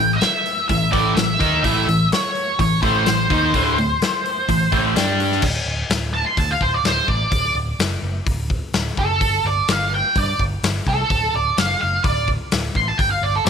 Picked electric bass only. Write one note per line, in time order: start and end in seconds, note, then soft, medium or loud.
0.00 0.20 A1 medium
0.69 0.91 A1 medium
0.93 1.15 A1 medium
1.16 1.38 A1 medium
1.41 1.63 D#2 medium
1.64 1.86 A1 loud
1.88 2.10 A1 medium
2.60 2.81 A1 medium
2.83 3.05 A1 medium
3.06 3.28 A1 medium
3.31 3.52 D#2 medium
3.54 3.76 D1 medium
3.77 3.99 D1 medium
4.49 4.71 A1 medium
4.73 4.95 A1 medium
4.96 5.40 G2 medium
5.43 5.59 D1 medium
5.66 5.82 D1 medium
5.90 6.22 D1 medium
6.37 6.53 D2 medium
6.61 6.77 D1 medium
6.84 7.00 D1 medium
7.08 7.25 A1 medium
7.32 7.48 D1 medium
7.55 7.72 D1 medium
7.79 7.95 F#1 medium
8.03 8.19 F#1 medium
8.26 8.59 D1 medium
8.74 8.90 D1 medium
8.97 9.21 F#1 medium
9.21 9.37 G1 loud
9.45 9.61 G1 medium
9.69 10.01 G1 loud
10.16 10.32 G2 medium
10.40 10.56 G1 medium
10.63 10.79 G1 medium
10.87 11.03 C2 medium
11.10 11.26 D1 loud
11.34 11.50 D1 medium
11.58 11.74 F#1 medium
11.83 11.98 F#1 medium
12.04 12.36 D1 medium
12.53 12.68 D1 medium
12.75 12.91 A1 medium
12.99 13.15 G1 loud
13.22 13.38 G1 medium
13.46 13.50 G1 loud